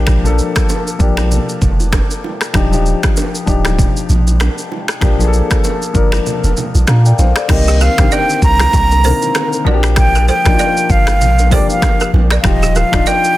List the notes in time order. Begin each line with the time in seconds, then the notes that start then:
Already playing: A#1 F3 A#3 D4 G4
0.07 finger snap, kick, cross-stick, low conga, shaker
0.24 F3 A#3 D4 A4, shaker
0.38 low bongo, shaker
0.56 finger snap, kick, cross-stick, shaker
0.69 high bongo, shaker
0.87 shaker
0.99 A#1 F3 A#3 D4 G4, kick, shaker
1.17 finger snap, cross-stick, low bongo, shaker
1.31 low conga, shaker
1.49 shaker
1.62 F1, kick, low conga, shaker
1.80 low bongo, shaker
1.93 finger snap, kick, cross-stick, high bongo, shaker
2.10 shaker
2.24 low bongo
2.41 finger snap, cross-stick, shaker
2.53 D#1 F3 D4 D#4 G4, finger snap, kick, cross-stick, low conga, shaker
2.71 F3 D4 D#4 G4, shaker
2.86 low bongo, shaker
3.03 finger snap, kick, cross-stick, shaker
3.17 high bongo, shaker
3.35 shaker
3.46 D1 F3 D4 D#4 G4, kick, shaker
3.65 finger snap, cross-stick, low bongo, shaker
3.79 kick, low conga, shaker
3.96 shaker
4.09 A#1, low conga, shaker
4.27 low bongo, shaker
4.40 finger snap, cross-stick, high bongo, shaker
4.58 shaker
4.72 low bongo
4.88 finger snap, cross-stick, shaker
5.01 A#1 F3 A#3 D4 G4, finger snap, kick, cross-stick, low conga, shaker
5.19 F3 A#3 D4 G#4, shaker
5.28 A4
5.33 low bongo, shaker
5.51 finger snap, kick, cross-stick, shaker
5.64 high bongo, shaker
5.82 shaker
5.94 G1 F3 A#3 D4 A#4, kick, shaker
6.12 finger snap, cross-stick, low bongo, shaker
6.26 low conga, shaker
6.44 F1, high bongo, shaker
6.57 low conga, shaker
6.75 A#1, low bongo, shaker
6.87 A#2 F5 A#5, finger snap, cross-stick, high bongo, shaker
7.05 D5 G5, shaker
7.19 A#1 C5 F5, high bongo, low bongo, shaker
7.36 A4 D5, finger snap, cross-stick, shaker
7.48 C2 D#3 A#3 C4 G4 D#5, finger snap, kick, cross-stick, crash, low conga, shaker
7.68 D#4 G4, shaker
7.81 G4 A#4 F5, low bongo, shaker
7.97 A#1 D3 A#3 C4 G4, finger snap, kick, cross-stick, shaker
8.04 D#3
8.11 A#4 D5 G5, high bongo, shaker
8.29 shaker
8.42 C2 A#5, kick, shaker
8.59 finger snap, cross-stick, low bongo, shaker
8.73 C2, kick, low conga, shaker
8.91 high bongo, shaker
9.03 D3 A#3 C4 A4 A#4 C5, open hi-hat, low conga, shaker
9.09 D#3
9.22 low bongo, shaker
9.35 finger snap, cross-stick, high bongo, shaker
9.53 shaker
9.65 A#1 F3 A#3 D4 F#4 A#4 D5, high bongo, low bongo
9.74 G4
9.83 finger snap, cross-stick, shaker
9.96 G5, finger snap, kick, cross-stick, low conga, shaker
10.15 G4 A#4, shaker
10.28 A4 C5 G5, low bongo, shaker
10.44 A#1 F3 A#3 D4 D#4, finger snap, kick, cross-stick, shaker
10.53 F4
10.59 A#4 D5, high bongo, shaker
10.77 shaker
10.90 G1 F5, kick, shaker
11.07 finger snap, cross-stick, low bongo, shaker
11.21 A#1, low conga, shaker
11.39 high bongo, shaker
11.50 F3 A#3 D4 G4 A4 C5 D5, kick, open hi-hat, low conga, shaker
11.70 F5, low bongo, shaker
11.82 finger snap, kick, cross-stick, high bongo, shaker
12.00 G4 A#4, shaker
12.13 A#1, high bongo, low bongo
12.31 A#4 D5, finger snap, cross-stick, shaker
12.40 F3 F5
12.44 D#1 D#4 F4 G4 D#5, finger snap, kick, cross-stick, low conga, shaker
12.62 D#4 G4, shaker
12.75 G4 A#4 F5, low bongo, shaker
12.92 D1 F3 D4 D#4 F4, finger snap, kick, cross-stick, shaker
13.06 A#4 D5 G5, high bongo, shaker
13.24 shaker